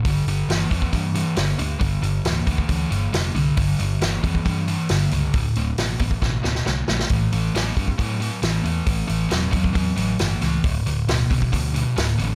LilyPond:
<<
  \new Staff \with { instrumentName = "Distorted electric guitar" } { \clef bass \time 4/4 \key g \dorian \tempo 4 = 136 <g, d>8 <g, d>8 <g, e>8 <g, e>8 <g, e>8 <g, e>8 <g, d>8 <g, d>8 | <g, d>8 <g, d>8 <g, e>8 <g, e>8 <g, e>8 <g, e>8 <g, d>8 <g, d>8 | <g, d>8 <g, d>8 <g, e>8 <g, e>8 <g, e>8 <g, e>8 <g, d>8 <g, d>8 | <d, a,>8 <d, a,>8 <d, b,>8 <d, b,>8 <d, b,>8 <d, b,>8 <d, a,>8 <d, a,>8 |
<a, e>8 <a, e>8 <a, fis>8 <a, fis>8 <a, fis>8 <a, fis>8 <a, e>8 <a, e>8 | <a, e>8 <a, e>8 <a, fis>8 <a, fis>8 <a, fis>8 <a, fis>8 <a, e>8 <a, e>8 | <d, a,>8 <d, a,>8 <d, b,>8 <d, b,>8 <d, b,>8 <d, b,>8 <d, a,>8 <d, a,>8 | }
  \new Staff \with { instrumentName = "Picked electric bass" } { \clef bass \time 4/4 \key g \dorian g,,8 g,,8 g,,8 f,8 g,4 g,,8 d,8 | g,,8 g,,8 d,,8 d,8 d,8 g,,8 f,,8 c,8 | g,,8 g,,8 g,,8 f,8 g,4 g,,8 cis,8 | d,,8 d,,8 a,,8 a,,8 a,,8 d,,8 c,8 bes,,8 |
a,,8 a,,8 a,,8 g,8 a,4 a,,8 e,8 | a,,8 a,,8 e,,8 e,8 e,8 a,,8 g,,8 cis,8 | d,,8 d,,8 d,,8 c,8 d,4 d,,8 a,,8 | }
  \new DrumStaff \with { instrumentName = "Drums" } \drummode { \time 4/4 <hho bd>8 hho8 <hho sn>8 <hho bd>16 bd16 <hho bd>8 hho8 <hho sn>8 hho8 | <hho bd>8 hho8 <hho sn>8 <hho bd>16 bd16 <hho bd>8 hho8 <hho sn>8 hho8 | <hho bd>8 hho8 <hho sn>8 <hho bd>16 bd16 <hho bd>8 hho8 <hho sn>8 hho8 | <hho bd>8 hho8 <hho sn>8 <hho bd>16 bd16 <bd sn>8 sn16 sn16 sn8 sn16 sn16 |
<hho bd>8 hho8 <hho sn>8 <hho bd>16 bd16 <hho bd>8 hho8 <hho sn>8 hho8 | <hho bd>8 hho8 <hho sn>8 <hho bd>16 bd16 <hho bd>8 hho8 <hho sn>8 <hho sn>8 | <hho bd>8 hho8 <hho sn>8 <hho bd>16 bd16 <hho bd>8 hho8 <hho sn>8 hho8 | }
>>